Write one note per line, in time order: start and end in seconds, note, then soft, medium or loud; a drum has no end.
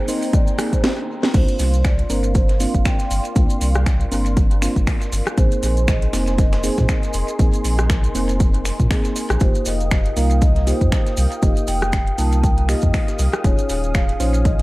0.00 0.84 A#3 medium
0.00 0.84 D#4 medium
0.00 1.30 D#4 medium
0.00 0.84 G#4 medium
0.00 0.84 C5 medium
0.00 1.30 C5 medium
0.00 1.32 G5 medium
0.00 1.30 A#5 loud
0.08 0.56 A#3 medium
0.08 0.56 C4 medium
0.08 0.56 D#4 medium
0.08 0.56 C5 loud
0.08 0.34 D#5 loud
0.08 open hi-hat loud
0.08 maracas loud
0.22 open hi-hat medium
0.22 maracas soft
0.33 0.74 D5 loud
0.33 kick loud
0.33 closed hi-hat medium
0.33 maracas medium
0.47 closed hi-hat soft
0.47 maracas soft
0.58 0.84 A#3 medium
0.58 0.84 C4 medium
0.58 0.84 D#4 medium
0.58 0.84 G#4 loud
0.58 finger snap medium
0.58 cross-stick medium
0.58 open hi-hat loud
0.58 maracas medium
0.73 0.83 C5 loud
0.73 kick medium
0.73 closed hi-hat medium
0.73 maracas soft
0.84 snare loud
1.23 snare medium
1.34 1.43 C2 loud
1.34 2.07 A#3 medium
1.34 2.07 C4 medium
1.34 2.07 D4 medium
1.34 2.07 F4 loud
1.34 13.40 A#4 medium
1.34 1.73 C5 medium
1.34 5.34 D5 medium
1.34 5.34 F5 medium
1.34 5.34 C6 loud
1.34 kick loud
1.34 closed hi-hat medium
1.34 crash loud
1.34 maracas medium
1.48 closed hi-hat medium
1.48 maracas soft
1.59 2.03 C2 medium
1.59 snare soft
1.59 closed hi-hat medium
1.59 open hi-hat loud
1.59 maracas medium
1.74 1.85 C5 medium
1.74 closed hi-hat soft
1.74 maracas soft
1.84 2.08 D5 medium
1.84 finger snap loud
1.84 kick loud
1.84 snare loud
1.84 closed hi-hat medium
1.84 maracas medium
1.99 closed hi-hat soft
1.99 closed hi-hat medium
2.10 2.66 G1 loud
2.10 2.58 A#3 medium
2.10 2.58 C4 medium
2.10 2.58 D4 medium
2.10 2.58 A#4 loud
2.10 2.33 C5 medium
2.10 snare medium
2.10 closed hi-hat medium
2.10 open hi-hat loud
2.10 maracas medium
2.23 closed hi-hat soft
2.23 maracas soft
2.35 2.61 C5 medium
2.35 kick loud
2.35 closed hi-hat medium
2.35 maracas medium
2.49 snare soft
2.49 closed hi-hat medium
2.60 3.33 A#3 medium
2.60 3.33 C4 medium
2.60 3.33 D4 medium
2.60 3.33 F4 medium
2.60 2.84 F5 medium
2.60 snare soft
2.60 closed hi-hat medium
2.60 open hi-hat loud
2.60 maracas medium
2.75 2.81 G1 loud
2.75 kick medium
2.75 closed hi-hat soft
2.75 maracas soft
2.85 3.22 G5 loud
2.85 finger snap loud
2.85 kick loud
2.85 snare loud
2.85 closed hi-hat medium
2.85 maracas medium
2.99 snare soft
2.99 closed hi-hat medium
2.99 maracas soft
3.11 3.20 G1 loud
3.11 closed hi-hat medium
3.11 open hi-hat loud
3.11 maracas medium
3.25 closed hi-hat soft
3.25 maracas soft
3.36 3.45 C2 medium
3.36 4.09 A#3 medium
3.36 4.09 C4 medium
3.36 4.09 D4 medium
3.36 4.09 F4 loud
3.36 kick loud
3.36 closed hi-hat medium
3.36 maracas medium
3.50 closed hi-hat medium
3.50 maracas soft
3.61 4.05 C2 medium
3.61 closed hi-hat medium
3.61 open hi-hat loud
3.61 maracas medium
3.75 cross-stick medium
3.75 maracas soft
3.86 finger snap loud
3.86 kick loud
3.86 snare loud
3.86 closed hi-hat medium
3.86 maracas medium
4.01 closed hi-hat medium
4.12 4.68 G1 loud
4.12 4.59 A#3 medium
4.12 4.59 C4 medium
4.12 4.59 D4 medium
4.12 4.59 A#4 loud
4.12 closed hi-hat medium
4.12 open hi-hat loud
4.12 maracas medium
4.26 closed hi-hat soft
4.26 maracas soft
4.37 kick loud
4.37 closed hi-hat medium
4.37 maracas medium
4.51 closed hi-hat medium
4.62 5.35 A#3 medium
4.62 5.35 C4 medium
4.62 5.35 D4 medium
4.62 5.35 F4 loud
4.62 finger snap medium
4.62 snare medium
4.62 closed hi-hat medium
4.62 open hi-hat loud
4.62 maracas loud
4.76 4.83 G1 loud
4.76 kick medium
4.76 closed hi-hat soft
4.76 maracas soft
4.87 finger snap loud
4.87 kick loud
4.87 snare loud
4.87 closed hi-hat medium
4.87 open hi-hat medium
4.87 maracas medium
5.01 snare medium
5.01 closed hi-hat medium
5.01 maracas soft
5.12 5.21 G1 loud
5.12 snare medium
5.12 closed hi-hat medium
5.12 open hi-hat loud
5.12 maracas loud
5.27 cross-stick medium
5.27 closed hi-hat soft
5.27 maracas soft
5.37 5.47 A#1 loud
5.37 6.11 A#3 medium
5.37 6.11 C4 medium
5.37 6.11 D#4 medium
5.37 6.11 G#4 loud
5.37 5.76 C5 loud
5.37 9.37 D#5 medium
5.37 9.37 G#5 medium
5.37 9.37 C6 loud
5.37 kick loud
5.37 closed hi-hat medium
5.37 maracas medium
5.52 closed hi-hat medium
5.52 maracas soft
5.63 6.07 A#1 medium
5.63 snare soft
5.63 closed hi-hat medium
5.63 open hi-hat loud
5.63 maracas loud
5.77 5.88 C5 medium
5.77 closed hi-hat soft
5.77 maracas soft
5.88 6.14 D#5 loud
5.88 finger snap loud
5.88 kick loud
5.88 snare loud
5.88 closed hi-hat medium
5.88 closed hi-hat loud
5.88 maracas medium
6.02 closed hi-hat medium
6.02 closed hi-hat soft
6.13 6.70 F1 loud
6.13 6.61 A#3 medium
6.13 6.61 C4 medium
6.13 6.61 D#4 medium
6.13 6.39 C5 medium
6.13 6.61 C5 loud
6.13 snare loud
6.13 closed hi-hat medium
6.13 open hi-hat loud
6.13 maracas medium
6.27 snare medium
6.27 closed hi-hat soft
6.27 maracas soft
6.38 6.64 D#5 loud
6.38 kick loud
6.38 snare soft
6.38 closed hi-hat medium
6.38 maracas medium
6.53 snare loud
6.53 closed hi-hat medium
6.53 closed hi-hat soft
6.63 7.37 A#3 medium
6.63 7.37 C4 medium
6.63 7.37 D#4 medium
6.63 7.37 G#4 loud
6.63 6.90 C5 medium
6.63 snare medium
6.63 open hi-hat loud
6.63 maracas loud
6.78 6.85 A#2 loud
6.78 kick medium
6.78 snare soft
6.78 closed hi-hat medium
6.78 maracas soft
6.89 7.25 D#5 medium
6.89 finger snap loud
6.89 kick loud
6.89 snare loud
6.89 closed hi-hat medium
6.89 maracas medium
7.03 snare soft
7.03 closed hi-hat medium
7.03 maracas soft
7.13 7.23 F1 loud
7.13 closed hi-hat medium
7.13 open hi-hat loud
7.13 maracas loud
7.28 closed hi-hat soft
7.28 maracas soft
7.39 7.48 A#1 loud
7.39 8.12 A#3 medium
7.39 8.12 C4 medium
7.39 8.12 D#4 medium
7.39 8.12 G#4 medium
7.39 kick loud
7.39 closed hi-hat medium
7.39 maracas medium
7.54 closed hi-hat medium
7.54 maracas soft
7.64 8.08 A#1 medium
7.64 closed hi-hat medium
7.64 open hi-hat loud
7.64 maracas loud
7.78 cross-stick medium
7.78 closed hi-hat soft
7.78 maracas soft
7.90 finger snap loud
7.90 kick loud
7.90 snare loud
7.90 closed hi-hat medium
7.90 maracas medium
8.04 closed hi-hat medium
8.04 maracas soft
8.15 8.71 F1 loud
8.15 8.63 A#3 medium
8.15 8.63 C4 medium
8.15 8.63 D#4 medium
8.15 8.63 C5 loud
8.15 closed hi-hat medium
8.15 open hi-hat loud
8.15 maracas loud
8.29 closed hi-hat soft
8.29 maracas soft
8.40 kick loud
8.40 closed hi-hat medium
8.40 maracas medium
8.54 closed hi-hat soft
8.65 finger snap medium
8.65 snare medium
8.65 closed hi-hat medium
8.65 open hi-hat loud
8.65 maracas medium
8.80 8.87 A#2 loud
8.80 kick medium
8.80 closed hi-hat soft
8.80 maracas soft
8.91 9.38 A#3 medium
8.91 9.38 C4 medium
8.91 9.38 D#4 medium
8.91 9.38 G#4 loud
8.91 finger snap loud
8.91 kick loud
8.91 snare loud
8.91 closed hi-hat medium
8.91 open hi-hat medium
8.91 maracas medium
9.05 snare medium
9.05 closed hi-hat medium
9.05 maracas soft
9.16 snare medium
9.16 closed hi-hat medium
9.16 open hi-hat loud
9.16 maracas loud
9.30 9.37 A#1 medium
9.30 cross-stick medium
9.30 closed hi-hat soft
9.30 maracas soft
9.40 9.50 F1 loud
9.40 10.14 A#3 medium
9.40 10.14 D#4 medium
9.40 10.14 F4 medium
9.40 10.14 G4 medium
9.40 9.67 C5 medium
9.40 14.62 F5 medium
9.40 13.40 G5 medium
9.40 14.62 D#6 loud
9.40 kick loud
9.40 closed hi-hat medium
9.40 maracas medium
9.55 closed hi-hat medium
9.55 maracas soft
9.65 10.10 F1 medium
9.65 10.18 D#5 loud
9.65 snare soft
9.65 closed hi-hat medium
9.65 open hi-hat loud
9.65 maracas loud
9.80 closed hi-hat soft
9.80 maracas soft
9.91 finger snap loud
9.91 kick loud
9.91 snare loud
9.91 closed hi-hat medium
9.91 maracas soft
10.06 closed hi-hat soft
10.06 closed hi-hat medium
10.17 10.73 C2 loud
10.17 10.64 A#3 medium
10.17 10.64 D#4 medium
10.17 10.64 F4 medium
10.17 10.64 A#4 loud
10.17 10.40 F5 loud
10.17 snare medium
10.17 closed hi-hat medium
10.17 open hi-hat loud
10.17 maracas medium
10.30 closed hi-hat soft
10.30 maracas soft
10.42 10.68 D#5 loud
10.42 kick loud
10.42 closed hi-hat medium
10.42 maracas medium
10.56 snare soft
10.56 closed hi-hat soft
10.67 11.40 A#3 medium
10.67 11.40 D#4 medium
10.67 11.40 F4 medium
10.67 11.40 G4 medium
10.67 11.14 C5 medium
10.67 snare soft
10.67 closed hi-hat medium
10.67 open hi-hat loud
10.67 maracas medium
10.81 10.88 F2 loud
10.81 kick medium
10.81 closed hi-hat soft
10.81 maracas soft
10.92 finger snap loud
10.92 kick loud
10.92 snare loud
10.92 closed hi-hat medium
10.92 maracas medium
11.06 snare soft
11.06 closed hi-hat medium
11.06 maracas soft
11.17 11.27 C2 loud
11.17 closed hi-hat medium
11.17 open hi-hat loud
11.17 maracas medium
11.32 closed hi-hat soft
11.32 maracas soft
11.42 11.52 F1 loud
11.42 12.16 A#3 medium
11.42 12.16 D#4 medium
11.42 12.16 F4 medium
11.42 12.16 G4 loud
11.42 11.69 D#5 medium
11.42 kick loud
11.42 closed hi-hat medium
11.42 maracas medium
11.57 closed hi-hat medium
11.57 maracas soft
11.68 12.12 F1 medium
11.68 12.20 G5 loud
11.68 closed hi-hat medium
11.68 open hi-hat loud
11.68 maracas loud
11.82 cross-stick medium
11.82 maracas soft
11.92 finger snap loud
11.92 kick loud
11.92 snare loud
11.92 closed hi-hat loud
11.92 closed hi-hat medium
11.92 maracas medium
12.07 closed hi-hat medium
12.18 12.75 C2 loud
12.18 12.66 A#3 medium
12.18 12.66 D#4 medium
12.18 12.66 F4 medium
12.18 12.66 A#4 loud
12.18 12.44 A5 loud
12.18 closed hi-hat medium
12.18 open hi-hat loud
12.18 maracas medium
12.32 closed hi-hat soft
12.32 maracas soft
12.44 12.70 G5 loud
12.44 kick loud
12.44 closed hi-hat medium
12.44 maracas soft
12.58 closed hi-hat medium
12.69 13.42 A#3 medium
12.69 13.42 D#4 medium
12.69 13.42 F4 medium
12.69 13.42 G4 loud
12.69 13.16 D#5 medium
12.69 finger snap medium
12.69 snare medium
12.69 closed hi-hat medium
12.69 open hi-hat loud
12.69 maracas medium
12.81 12.90 F2 loud
12.81 kick medium
12.81 closed hi-hat soft
12.81 maracas soft
12.94 finger snap loud
12.94 kick loud
12.94 snare loud
12.94 closed hi-hat medium
12.94 open hi-hat medium
12.94 maracas medium
13.08 snare medium
13.08 closed hi-hat medium
13.08 maracas soft
13.19 13.28 C2 loud
13.19 snare medium
13.19 closed hi-hat medium
13.19 open hi-hat loud
13.19 maracas medium
13.33 cross-stick medium
13.33 closed hi-hat soft
13.33 maracas soft
13.44 13.53 D#1 loud
13.44 14.17 C#4 medium
13.44 14.62 C#4 medium
13.44 14.17 D#4 medium
13.44 14.17 F4 medium
13.44 14.17 G#4 loud
13.44 13.81 C#5 loud
13.44 14.62 G#5 medium
13.44 kick loud
13.44 closed hi-hat medium
13.44 maracas soft
13.59 closed hi-hat medium
13.59 maracas soft
13.69 14.14 D#1 medium
13.69 snare soft
13.69 closed hi-hat medium
13.69 open hi-hat loud
13.69 maracas medium
13.84 13.95 C#5 medium
13.84 closed hi-hat soft
13.84 maracas soft
13.94 14.21 F5 loud
13.94 finger snap loud
13.94 kick loud
13.94 snare loud
13.94 closed hi-hat loud
13.94 closed hi-hat medium
13.94 maracas soft
14.09 closed hi-hat soft
14.09 closed hi-hat medium
14.20 14.62 A#1 loud
14.20 14.62 C#4 medium
14.20 14.62 D#4 medium
14.20 14.62 F4 medium
14.20 14.62 C5 loud
14.20 14.46 C#5 loud
14.20 snare medium
14.20 closed hi-hat medium
14.20 open hi-hat loud
14.20 maracas medium
14.34 closed hi-hat soft
14.34 maracas soft
14.45 14.62 D#5 loud
14.45 kick loud
14.45 closed hi-hat medium
14.45 maracas soft